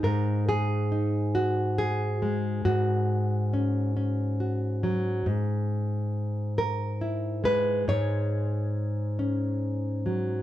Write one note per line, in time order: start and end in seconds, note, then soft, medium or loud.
0.00 2.65 G#2 medium
0.00 0.91 D#4 soft
0.00 0.48 A#4 medium
0.49 1.77 G#4 medium
0.92 2.61 D#4 soft
1.35 2.64 F#4 medium
1.78 2.66 G#4 medium
2.22 2.68 G#3 medium
2.65 5.26 G#2 medium
2.65 4.39 F#4 medium
3.53 3.95 C#4 soft
3.97 5.22 C#4 soft
4.40 5.22 F#4 soft
4.83 5.27 F#3 medium
5.26 7.87 G#2 medium
6.58 7.45 A#4 medium
7.01 7.83 E4 soft
7.44 10.06 G#3 medium
7.44 7.88 B4 medium
7.88 10.42 G#2 medium
7.88 10.42 C#5 loud
9.19 10.42 C#4 soft
10.06 10.42 F#3 medium